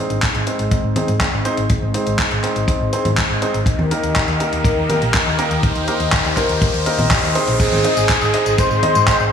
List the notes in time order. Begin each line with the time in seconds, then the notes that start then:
Already playing: G#3 C4 D#4 G#4 C5, riser
0.10 G#1, closed hi-hat
0.22 kick, clap, closed hi-hat
0.35 G#1, closed hi-hat
0.47 C4 D#4 G#4 C5, closed hi-hat
0.59 G#1, closed hi-hat
0.71 kick, closed hi-hat
0.84 G#1
0.96 C4 D#4 G#4 C5, closed hi-hat, high conga
1.08 G#2, closed hi-hat
1.20 kick, clap, closed hi-hat
1.33 G#1
1.45 C4 D#4 G#4 C5, closed hi-hat
1.57 G#1, closed hi-hat
1.70 kick, closed hi-hat
1.82 G#1
1.94 C4 D#4 G#4 C5, closed hi-hat
2.07 G#1, closed hi-hat
2.19 kick, clap, closed hi-hat
2.31 G#1, closed hi-hat
2.44 C4 D#4 G#4 C5, clap, closed hi-hat
2.56 G#1, closed hi-hat
2.68 kick, closed hi-hat
2.81 G#1
2.93 C4 D#4 G#4 C5, closed hi-hat
3.05 G#2, closed hi-hat, high conga
3.17 kick, clap, closed hi-hat
3.30 G#1
3.42 C4 D#4 G#4 C5, closed hi-hat
3.54 G#1, closed hi-hat
3.66 D#3 G4 A#4, kick, closed hi-hat
3.79 D#2, high conga
3.91 A#3 D#4 G4 A#4, closed hi-hat
4.03 D#2, closed hi-hat
4.16 kick, clap, closed hi-hat
4.28 D#2, closed hi-hat
4.40 A#3 D#4 G4 A#4, closed hi-hat
4.53 D#2, closed hi-hat
4.64 kick, closed hi-hat
4.77 D#2
4.89 A#3 D#4 G4 A#4, closed hi-hat, high conga
5.02 A#1, closed hi-hat
5.14 kick, clap, closed hi-hat
5.27 D#2
5.39 A#3 D#4 G4 A#4, closed hi-hat
5.51 D#2, closed hi-hat
5.63 C5, kick, closed hi-hat
5.76 D#2, closed hi-hat
5.88 A#3 D#4 G4 A#4, closed hi-hat
6.00 D#2, closed hi-hat
6.12 kick, clap, closed hi-hat
6.25 D#2, closed hi-hat
6.37 A#3 D#4 G4 A#4, kick, clap, closed hi-hat
6.49 D#2, closed hi-hat
6.62 kick, closed hi-hat
6.74 D#2, closed hi-hat
6.86 A#3 D#4 G4 A#4, closed hi-hat
6.99 A#1, closed hi-hat, high conga
7.11 kick, clap, closed hi-hat
7.23 D#2
7.35 C4 D#4 G#4 C5, closed hi-hat
7.48 A#1, closed hi-hat
7.60 C4 D#4 G#4, kick, closed hi-hat, tambourine, crash, downlifter
7.72 G#1, tambourine, high conga
7.84 D#4 G#4 C5 D#5, closed hi-hat
7.97 G#1, closed hi-hat, tambourine
8.09 kick, clap, closed hi-hat, tambourine
8.21 G#1, tambourine
8.34 D#4 G#4 C5 D#5, closed hi-hat
8.46 G#1, closed hi-hat, tambourine
8.58 C5, kick, closed hi-hat, tambourine
8.71 G#1, tambourine
8.83 D#4 G#4 C5 D#5, closed hi-hat, high conga
8.95 G#2, closed hi-hat, tambourine
9.08 kick, clap, closed hi-hat, tambourine
9.20 G#1, tambourine